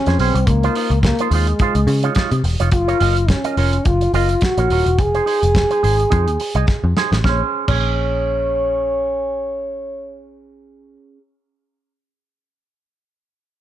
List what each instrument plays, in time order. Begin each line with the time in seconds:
Already playing: french horn C#4
0.06 picked electric bass F2, clean electric guitar C#4 G#4 C5, snare, closed hi-hat
0.19 picked electric bass B1, french horn C4, clean electric guitar C#4 G#4 C5, open hi-hat
0.34 picked electric bass C2, muted clean electric guitar stroke, closed hi-hat
0.47 picked electric bass C#2, french horn A#3, muted clean electric guitar stroke, kick, closed hi-hat
0.63 clean electric guitar D#4 F4 C5, closed hi-hat
0.75 clean electric guitar D#4 F4 C5, open hi-hat
0.90 picked electric bass C#2, muted clean electric guitar stroke, closed hi-hat
1.02 french horn A#3, muted clean electric guitar stroke, kick, snare, closed hi-hat
1.19 clean electric guitar D#4 F4 C5, closed hi-hat
1.31 picked electric bass D#2, french horn G#3, clean electric guitar D#4 F4, open hi-hat
1.35 clean electric guitar C5
1.47 muted clean electric guitar stroke, closed hi-hat
1.59 clean electric guitar D#4 F4 C5, kick, closed hi-hat
1.75 picked electric bass C#2, muted clean electric guitar stroke, closed hi-hat
1.87 picked electric bass C#3, muted clean electric guitar stroke, open hi-hat
2.03 clean electric guitar D#4 F4 C#5, closed hi-hat
2.15 clean electric guitar D#4 F4 C#5, kick, snare, closed hi-hat
2.31 picked electric bass C3, muted clean electric guitar stroke, closed hi-hat
2.44 picked electric bass E1, muted clean electric guitar stroke, open hi-hat
2.60 picked electric bass F1, clean electric guitar D#4 F4 C#5, closed hi-hat
2.71 picked electric bass F#1, french horn F4, muted clean electric guitar stroke, kick, closed hi-hat
2.88 clean electric guitar F4 A#4 C#5, closed hi-hat
3.00 picked electric bass F#1, clean electric guitar F4 A#4 D#5, open hi-hat
3.16 muted clean electric guitar stroke, closed hi-hat
3.29 french horn C#4, muted clean electric guitar stroke, kick, snare, closed hi-hat
3.44 clean electric guitar F4 A#4 D#5, closed hi-hat
3.57 picked electric bass F1, clean electric guitar F4 A#4 C#5, open hi-hat
3.73 muted clean electric guitar stroke, closed hi-hat
3.85 picked electric bass F#1, french horn F4, kick, closed hi-hat
4.01 muted clean electric guitar stroke, closed hi-hat
4.14 picked electric bass F#1, clean electric guitar F4 A#4 D#5, french horn F4, open hi-hat
4.29 muted clean electric guitar stroke, closed hi-hat
4.41 french horn F#4, muted clean electric guitar stroke, kick, snare, closed hi-hat
4.58 picked electric bass A#1, clean electric guitar F4 A#4 C#5, closed hi-hat
4.70 picked electric bass D#1, clean electric guitar F4 A#4 C#5, open hi-hat
4.86 picked electric bass E1, muted clean electric guitar stroke, closed hi-hat
4.99 picked electric bass F1, french horn G#4, muted clean electric guitar stroke, kick, closed hi-hat
5.15 clean electric guitar D#4 G#4 C5, closed hi-hat
5.26 clean electric guitar D#4 G#4 C5, open hi-hat
5.42 picked electric bass F1, muted clean electric guitar stroke, closed hi-hat
5.55 muted clean electric guitar stroke, kick, snare, closed hi-hat
5.71 clean electric guitar D#4 G#4 C5, closed hi-hat
5.83 picked electric bass G#1, clean electric guitar D#4 G#4 C5, open hi-hat
5.98 muted clean electric guitar stroke, closed hi-hat
6.10 picked electric bass F2, clean electric guitar D#4 G#4 C5, kick, closed hi-hat
6.27 picked electric bass D#2, muted clean electric guitar stroke, closed hi-hat
6.40 muted clean electric guitar stroke, open hi-hat
6.55 picked electric bass C2, clean electric guitar D#4 G#4 D#5, closed hi-hat
6.68 muted clean electric guitar stroke, kick, snare
6.84 picked electric bass F2, muted clean electric guitar stroke
6.97 clean electric guitar D#4 G#4 C5, snare
7.12 picked electric bass A1, muted clean electric guitar stroke, snare
7.24 picked electric bass A#1, clean electric guitar C#4 G#4, french horn C#5, kick, snare
7.29 clean electric guitar C5
7.68 picked electric bass A#1, clean electric guitar C#4 G#4, french horn C#5, kick, crash